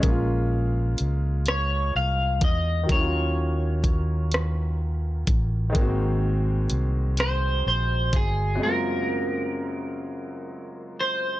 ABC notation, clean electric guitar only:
X:1
M:6/8
L:1/8
Q:3/8=42
K:Bbm
V:1 name="Clean electric guitar"
z3 d f e | d4 z2 | z3 c c A | B4- B c |]